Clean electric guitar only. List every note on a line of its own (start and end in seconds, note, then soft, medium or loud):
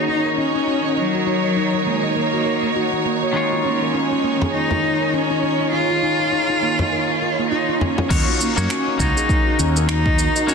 0.00 3.31 A#3 medium
0.00 3.32 D#4 medium
0.00 3.33 F#4 medium
0.00 3.33 C#5 medium
3.33 8.06 D#3 medium
3.33 8.07 G#3 medium
3.33 8.07 C#4 medium
3.33 8.08 F4 medium
3.37 8.08 C#5 medium
8.09 8.52 A#3 medium
8.09 8.53 D#4 medium
8.09 8.53 F#4 medium
8.09 8.53 C#5 medium
8.56 8.96 A#3 loud
8.56 8.96 D#4 medium
8.56 8.97 F#4 medium
8.56 8.97 C#5 loud
8.98 10.44 A#3 medium
8.98 10.45 D#4 medium
8.98 10.45 F#4 medium
8.98 10.46 C#5 medium
10.47 10.54 A#3 medium
10.47 10.54 D#4 medium
10.47 10.54 F#4 medium
10.47 10.54 C#5 medium